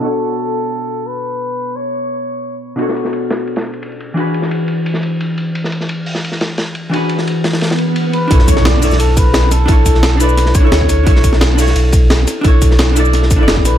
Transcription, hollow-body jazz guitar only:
\new Staff \with { instrumentName = "Hollow-body jazz guitar" } { \time 4/4 \key b \dorian \tempo 4 = 174 <b, d' e' fis' a' cis''>1~ | <b, d' e' fis' a' cis''>1 | <b, d' e' fis' a' cis''>1 | <e d' fis' gis' b'>1~ |
<e d' fis' gis' b'>1 | <e d' fis' gis' b'>1 | <d' e' a' cis''>4. <d' e' a' cis''>2~ <d' e' a' cis''>8 | <d' e' a' cis''>4. <d' e' a' d''>4~ <d' e' a' d''>16 <d' e' a' cis''>4~ <d' e' a' cis''>16 |
<d' e' a' cis''>4. <d' e' a' cis''>2~ <d' e' a' cis''>8 | <d' e' a' cis''>4. <d' e' a' d''>4~ <d' e' a' d''>16 <d' e' a' d''>4~ <d' e' a' d''>16 | }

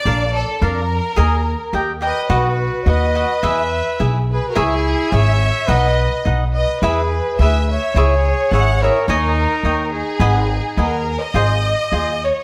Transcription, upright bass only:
\new Staff \with { instrumentName = "Upright bass" } { \clef bass \time 2/4 \key gis \minor \tempo 4 = 106 ais,,4 eis,4 | dis,4 dis,4 | b,,4 dis,4 | e,4 b,,4 |
cis,4 gis,,4 | b,,4 b,,4 | e,4 d,4 | cis,4 gis,,4 |
dis,4 dis,4 | gis,,4 dis,4 | \key aes \major aes,,4 ees,4 | }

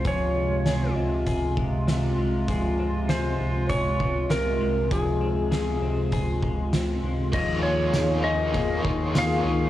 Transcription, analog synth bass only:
\new Staff \with { instrumentName = "Analog synth bass" } { \clef bass \time 4/4 \key des \lydian \tempo 4 = 99 des,4. des,2 c,8 | des,4. des,4. c,8 c,8 | des,4. des,2 des,8 | ees,2~ ees,8 ees,4 des,8 | }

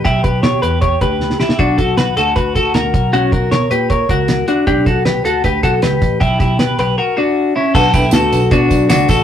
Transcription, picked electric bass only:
\new Staff \with { instrumentName = "Picked electric bass" } { \clef bass \time 4/4 \key b \minor \tempo 4 = 156 b,,8 b,,8 b,8 e,4 d,4 r8 | b,,4. d,4. d,8 b,,8 | b,,8 b,,8 b,8 ais,4 cis,4 r8 | b,,4. d,8 d,8 b,,8 cis,8 a,,8 |
b,,8 b,,8 b,8 b,,8 r2 | b,,8 b,,8 d,8 b,,8 b,8 b,,8 cis,8 a,,8 | }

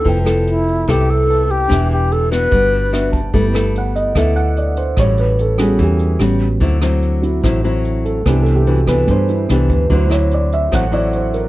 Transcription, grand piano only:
\new Staff \with { instrumentName = "Grand piano" } { \time 4/4 \key g \major \tempo 4 = 146 << { r1 | r2. e''8 a''8 | r4 fis''8 ees''8 e''8 fis''8 d''8 c''8 | cis''8 b'8 a'8 aes'8 g'4. r8 |
r2. r8 a'8 | \tuplet 3/2 { g'8 a'8 g'8 } fis'8 b'8 c''8 e'8 g'8 b'8 | c''8 cis''8 d''8 e''8 fis''8 d''8 c''8 bes'8 | } \\ { <e' a' b' g''>2. <e' a' b' a''>4 | <d' g' b' e''>2 <d' b' fis''>2 | <a b e'>4. r2 r8 | r4. <g b cis' fis'>4. <g b cis' fis'>4 |
r4. <fis c' e'>2~ <fis c' e'>8 | <e b d'>4. r8 <e b d'>8 r4. | <fis c' e'>1 | } >> }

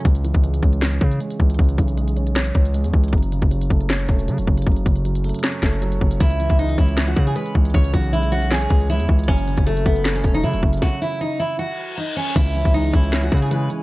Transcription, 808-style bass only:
\new Staff \with { instrumentName = "808-style bass" } { \clef bass \time 4/4 \key cis \minor \tempo 4 = 156 cis,8. cis,8. cis,4 cis8 r8 cis,8 | cis,8 b,,2 cis,8. e,16 cis,8 | fis,,8. fis,,8. fis,,4 e,,8 cis16 e,,16 fis,,8 | fis,,8 fis,,4~ fis,,16 r8. fis,,4 fis,,8 |
cis,8. cis,8. cis,4 cis8 r8 cis,8 | cis,8 b,,2 cis,8. e,16 cis,8 | fis,,8. fis,,8. fis,,4 e,,8 cis16 e,,16 fis,,8 | r1 |
cis,8. cis,8. cis,4 cis4 r8 | }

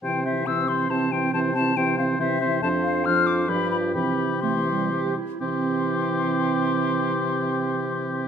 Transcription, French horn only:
\new Staff \with { instrumentName = "French horn" } { \clef bass \time 3/4 \key c \major \tempo 4 = 129 e8 e8 e8 e8 e8 e8 | e8 e8 e8 e8 e8 e8 | f4 f4 f4 | e4 e4. r8 |
e2.~ | e2. | }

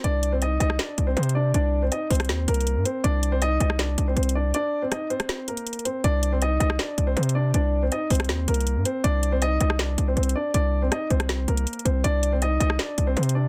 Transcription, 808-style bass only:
\new Staff \with { instrumentName = "808-style bass" } { \clef bass \time 4/4 \key c \minor \tempo 4 = 160 c,4. c,8 r8 c,8 c4 | c,4 r8 c,8 ees,8 c,8. g,16 r8 | c,4. c,4 c,8 c,4 | r1 |
c,4. c,8 r8 c,8 c4 | c,4 r8 c,8 ees,8 c,8. g,16 r8 | c,4. c,4 c,8 c,8 r8 | c,4 r8 c,4 c,8 r8 c,8 |
c,4. c,8 r8 c,8 c4 | }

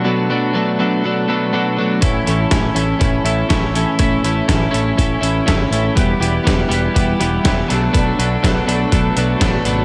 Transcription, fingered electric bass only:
\new Staff \with { instrumentName = "Fingered electric bass" } { \clef bass \time 4/4 \key b \minor \tempo 4 = 122 r1 | a,,8 a,,8 a,,8 a,,8 a,,8 a,,8 a,,4 | a,,8 a,,8 a,,8 a,,8 a,,8 a,,8 g,,8 a,,8 | e,,8 e,,8 e,,8 e,,8 e,,8 e,,8 e,,8 b,,8 |
b,,8 b,,8 b,,8 b,,8 b,,8 b,,8 a,,8 gis,,8 | }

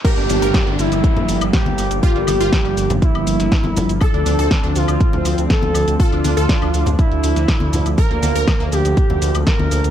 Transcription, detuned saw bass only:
\new Staff \with { instrumentName = "Detuned saw bass" } { \clef bass \time 4/4 \key g \dorian \tempo 4 = 121 r16 g,,16 g,,16 g,,16 r16 g,,16 g,,16 g,,16 r16 g,,16 g,,16 g,,16 r16 g,,16 g,,16 g,,16 | r16 g,,16 g,,16 g,,16 r16 g,,16 g,,16 g,,16 r16 g,,16 g,,16 g,,16 r16 g,,16 g,,16 g,,16 | r16 d,16 d,16 d,16 r16 d,16 d,16 d,16 r16 d,16 d,16 d,16 r16 d,16 d,16 d,16 | r16 d,16 d,16 d,16 r16 d,16 d,16 d,16 r16 d,16 d,16 d,16 r16 d,16 d,16 d,16 |
r16 d,16 d,16 d,16 r16 d,16 d,16 d,16 r16 d,16 d,16 d,16 r16 d,16 d,16 d,16 | }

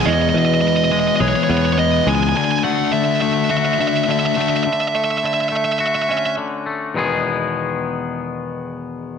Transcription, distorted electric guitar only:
\new Staff \with { instrumentName = "Distorted electric guitar" } { \time 4/4 \key e \major \tempo 4 = 104 <e gis b e'>8 <e gis b e'>8 <e gis b e'>8 <e gis b e'>8 <e gis b e'>8 <e gis b e'>8 <e gis b e'>8 <e gis b e'>8 | <d a d' fis'>8 <d a d' fis'>8 <d a d' fis'>8 <d a d' fis'>8 <d a d' fis'>8 <d a d' fis'>8 <d a d' fis'>8 <d a d' fis'>8 | r1 | r1 | }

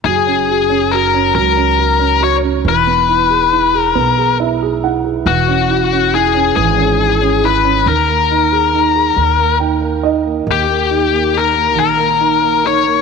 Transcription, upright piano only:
\new Staff \with { instrumentName = "Upright piano" } { \time 6/8 \key fis \mixolydian \tempo 4. = 46 << { r2. | r2 e''8 fis''8 | r2. | r2 g''8 dis''8 |
r2. | } \\ { fis16 cis'16 fis'16 cis'16 fis'16 cis'16 fis16 cis'16 fis'16 cis'16 fis'16 cis'16 | e16 b16 e'16 gis'16 e'16 gis'16 b16 gis'16 e'16 gis'16 e'16 gis'16 | e16 cis'16 e'16 cis'16 e'16 cis'16 e16 cis'16 e'16 cis'16 e'16 cis'16 | dis16 ais16 dis'16 gis'16 dis'16 gis'16 dis16 ais16 dis'16 ais16 dis'16 ais16 |
dis16 ais16 dis'16 ais16 dis'16 ais16 dis16 ais16 dis'16 ais16 dis'16 ais16 | } >> }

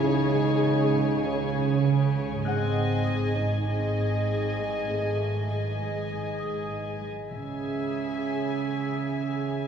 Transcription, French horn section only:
\new Staff \with { instrumentName = "French horn section" } { \time 4/4 \key cis \minor \tempo 4 = 99 dis'2 cis'4 r4 | bis4. dis'8 bis2 | a4 gis2~ gis8 r8 | cis'1 | }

